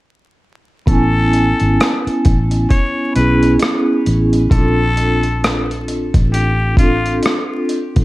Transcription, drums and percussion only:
0.87 kick, closed hi-hat
1.33 closed hi-hat
1.60 closed hi-hat
1.81 cross-stick, closed hi-hat
2.07 closed hi-hat
2.25 kick, closed hi-hat
2.51 closed hi-hat
2.70 kick, closed hi-hat
3.16 closed hi-hat
3.43 closed hi-hat
3.59 cross-stick, closed hi-hat
4.06 closed hi-hat
4.33 closed hi-hat
4.51 kick, closed hi-hat
4.97 closed hi-hat
5.23 closed hi-hat
5.44 cross-stick, closed hi-hat
5.71 closed hi-hat
5.88 closed hi-hat
6.14 kick, closed hi-hat
6.34 closed hi-hat
6.77 kick, closed hi-hat
7.06 closed hi-hat
7.23 cross-stick, closed hi-hat
7.69 closed hi-hat
7.96 kick, closed hi-hat

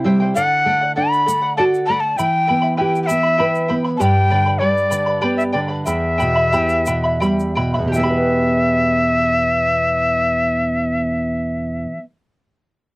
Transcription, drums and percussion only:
0.36 shaker
1.13 shaker
1.29 shaker
1.74 shaker
2.19 shaker
2.96 shaker
3.09 shaker
3.55 shaker
4.01 shaker
4.77 shaker
4.92 shaker
5.40 shaker
5.87 shaker
6.20 shaker
6.53 shaker
6.69 shaker
6.86 shaker
7.22 shaker
7.40 shaker
7.94 shaker

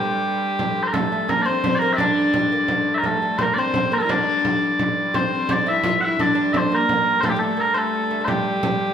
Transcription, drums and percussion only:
0.59 frame drum
0.76 frame drum
0.94 frame drum
1.12 frame drum
1.29 frame drum
1.47 frame drum
1.64 frame drum
1.98 frame drum
2.16 frame drum
2.34 frame drum
2.51 frame drum
2.68 frame drum
3.03 frame drum
3.21 frame drum
3.39 frame drum
3.57 frame drum
3.74 frame drum
4.09 frame drum
4.45 frame drum
4.79 frame drum
4.97 frame drum
5.14 frame drum
5.32 frame drum
5.49 frame drum
5.66 frame drum
5.84 frame drum
6.19 frame drum
6.37 frame drum
6.54 frame drum
6.72 frame drum
6.89 frame drum
7.23 frame drum
7.42 frame drum
7.76 frame drum
8.28 frame drum
8.63 frame drum
8.80 frame drum

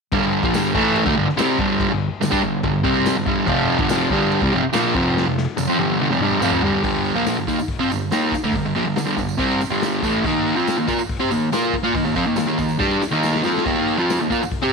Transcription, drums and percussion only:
0.12 kick, crash
0.43 kick
0.54 snare, tambourine, crash
0.75 kick
0.96 crash
1.06 kick
1.29 snare
1.38 snare, tambourine, crash
1.59 kick
1.80 kick, crash
2.22 snare, tambourine, crash
2.32 kick
2.63 kick, crash
2.84 kick
3.05 snare, tambourine, crash
3.27 kick
3.47 kick, crash
3.79 kick
3.89 snare, tambourine, crash
4.10 kick
4.32 crash
4.42 kick
4.73 snare, tambourine, crash
4.95 kick
5.17 snare
5.38 snare
5.58 high tom, tambourine
5.79 high tom
6.00 mid tom
6.11 mid tom
6.20 mid tom
6.31 mid tom
6.41 mid tom, tambourine
6.52 floor tom
6.62 floor tom
6.72 floor tom
6.84 kick, open hi-hat, tambourine
7.05 open hi-hat
7.17 tambourine
7.25 snare, open hi-hat, tambourine
7.47 kick, open hi-hat, tambourine
7.59 tambourine
7.68 kick, open hi-hat
7.82 tambourine
7.90 open hi-hat, tambourine
8.11 snare, open hi-hat, tambourine
8.32 kick, open hi-hat, tambourine
8.45 tambourine
8.53 kick, open hi-hat, tambourine
8.75 open hi-hat
8.96 snare, open hi-hat, tambourine
9.17 kick, snare, open hi-hat, tambourine
9.29 tambourine
9.39 kick, open hi-hat
9.51 tambourine
9.60 open hi-hat, tambourine
9.81 snare, open hi-hat, tambourine
9.93 tambourine
10.03 kick, open hi-hat, tambourine
10.24 kick, open hi-hat, tambourine
10.46 open hi-hat
10.57 tambourine
10.67 snare, open hi-hat, tambourine
10.88 kick, snare, open hi-hat, tambourine
10.98 tambourine
11.09 kick, open hi-hat
11.20 tambourine
11.31 open hi-hat, tambourine
11.52 snare, open hi-hat, tambourine
11.73 kick, open hi-hat
11.85 tambourine
11.95 kick, open hi-hat, tambourine
12.05 tambourine
12.15 kick, open hi-hat, tambourine
12.25 tambourine
12.36 snare, open hi-hat, tambourine
12.58 kick, open hi-hat, tambourine
12.69 tambourine
12.80 kick, snare, tambourine
12.91 tambourine
13.02 snare, tambourine
13.14 tambourine
13.23 snare, tambourine
13.35 snare
13.43 snare, tambourine
13.55 snare, tambourine
13.66 kick, open hi-hat, tambourine
13.87 open hi-hat
13.99 tambourine
14.09 snare, open hi-hat, tambourine
14.30 kick, open hi-hat, tambourine
14.43 tambourine
14.51 kick, open hi-hat
14.64 tambourine

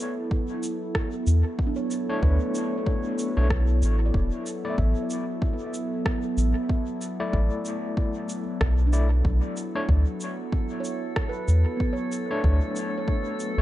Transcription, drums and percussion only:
0.31 kick
0.63 shaker
0.95 kick, cross-stick
1.27 shaker
1.59 kick
1.91 shaker
2.23 kick
2.55 shaker
2.86 kick
3.19 shaker
3.50 kick, cross-stick
3.82 shaker
4.14 kick
4.46 shaker
4.78 kick
5.10 shaker
5.42 kick
5.74 shaker
6.06 kick, cross-stick
6.38 shaker
6.69 kick
7.01 shaker
7.33 kick
7.65 shaker
7.97 kick
8.29 shaker
8.61 kick, cross-stick
8.93 shaker
9.25 kick
9.57 shaker
9.89 kick
10.20 shaker
10.52 kick
10.84 shaker
11.16 kick, cross-stick
11.48 shaker
11.80 kick
12.12 shaker
12.44 kick
12.76 shaker
13.08 kick
13.40 shaker

